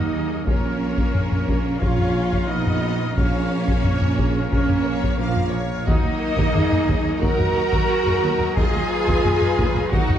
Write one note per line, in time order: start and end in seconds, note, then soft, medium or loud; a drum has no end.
0.00 0.38 D#2 medium
0.00 0.39 D#2 medium
0.00 0.43 F#3 medium
0.00 0.43 A#3 medium
0.00 0.45 A#3 medium
0.00 0.45 D#4 medium
0.00 0.47 D#4 medium
0.00 0.12 F#4 medium
0.00 0.42 A#4 medium
0.00 0.43 D#5 medium
0.00 0.46 D#5 medium
0.13 0.46 G#4 medium
0.46 1.06 A#1 medium
0.46 1.79 A#3 medium
0.46 5.82 C#4 medium
0.46 1.81 C#4 medium
0.46 1.79 C#4 medium
0.46 5.86 F4 medium
0.46 5.83 A#4 medium
0.46 1.79 A#4 medium
0.46 1.79 C#5 medium
0.46 5.86 F5 medium
0.46 taiko medium
0.97 taiko medium
1.14 1.74 A#1 medium
1.14 taiko low-mid medium
1.32 taiko low-mid soft
1.48 taiko medium
1.80 2.41 A#1 medium
1.80 2.49 C#4 medium
1.80 2.48 F4 medium
1.80 2.49 F4 medium
1.80 2.48 C#5 medium
1.80 2.48 F5 medium
1.80 taiko medium
1.99 taiko low-mid soft
2.33 taiko medium
2.48 3.08 A#1 medium
2.48 2.99 A#1 medium
2.48 3.16 B3 medium
2.48 3.17 D#4 loud
2.48 3.17 D#4 medium
2.48 3.16 D#5 medium
2.48 3.17 D#5 medium
2.67 taiko low-mid soft
3.15 3.76 A#1 medium
3.15 4.49 A#3 medium
3.15 4.48 C#4 medium
3.15 4.49 C#4 loud
3.15 4.49 C#5 medium
3.15 3.83 F5 medium
3.15 taiko medium
3.68 taiko medium
3.84 4.44 A#1 medium
3.84 4.18 C#5 medium
3.84 taiko low-mid medium
4.02 taiko low-mid medium
4.17 4.51 G#4 medium
4.17 taiko medium
4.51 5.11 A#1 medium
4.51 5.17 A#3 medium
4.51 5.18 C#4 loud
4.51 5.18 C#4 medium
4.51 4.85 A#4 medium
4.51 5.18 C#5 medium
4.51 taiko medium
4.70 taiko low-mid soft
4.86 5.19 C#5 medium
5.04 taiko medium
5.18 5.78 A#1 medium
5.18 5.79 A#1 medium
5.18 5.53 F3 medium
5.18 5.52 A#3 loud
5.18 5.53 A#3 medium
5.18 5.53 A#4 medium
5.18 5.52 F5 medium
5.37 taiko low-mid soft
5.51 5.86 C#5 medium
5.86 5.93 D#2 medium
5.86 10.19 F#3 medium
5.86 7.18 A#3 loud
5.86 7.18 D#4 loud
5.86 10.19 D#4 medium
5.86 7.18 D#4 loud
5.86 6.20 F#4 medium
5.86 10.19 D#5 medium
5.86 7.18 D#5 loud
5.86 10.19 A#5 medium
5.86 taiko medium
6.03 6.10 D#2 medium
6.19 6.53 A#4 medium
6.36 6.43 D#2 loud
6.36 taiko medium
6.53 6.60 D#2 medium
6.53 6.61 D#2 medium
6.53 7.21 G#4 medium
6.53 taiko low-mid medium
6.72 taiko low-mid soft
6.86 6.93 D#2 medium
6.86 6.94 D#2 medium
6.86 taiko medium
7.03 7.10 D#2 medium
7.20 7.27 D#2 loud
7.20 7.28 D#2 loud
7.20 8.57 F#4 loud
7.20 7.90 F#4 medium
7.20 8.56 A#4 loud
7.20 8.57 A#4 loud
7.20 8.57 A#5 loud
7.20 taiko medium
7.37 7.44 D#2 medium
7.37 taiko low-mid soft
7.54 7.61 D#2 medium
7.54 7.62 D#2 medium
7.71 7.78 D#2 loud
7.71 taiko medium
7.88 8.23 G#4 medium
8.05 8.12 D#2 medium
8.05 taiko low-mid soft
8.22 8.29 D#2 medium
8.22 8.30 D#2 loud
8.22 8.57 F#4 medium
8.39 8.46 D#2 medium
8.56 8.63 D#2 loud
8.56 8.63 D#2 medium
8.56 9.89 F4 loud
8.56 9.92 G#4 loud
8.56 9.89 G#4 loud
8.56 8.90 D#5 medium
8.56 9.92 G#5 loud
8.56 taiko medium
8.73 8.80 D#2 medium
8.91 9.92 B4 loud
9.07 9.14 D#2 medium
9.07 taiko medium
9.24 9.31 D#2 medium
9.24 taiko low-mid medium
9.42 taiko low-mid medium
9.57 9.64 D#2 medium
9.57 9.65 D#2 loud
9.57 taiko medium
9.74 9.81 D#2 medium
9.91 9.98 D#2 loud
9.91 10.19 D#4 loud
9.91 10.19 F#4 loud
9.91 10.19 A#4 medium
9.91 10.19 F#5 loud
9.91 taiko medium
10.08 10.15 D#2 medium
10.08 taiko low-mid soft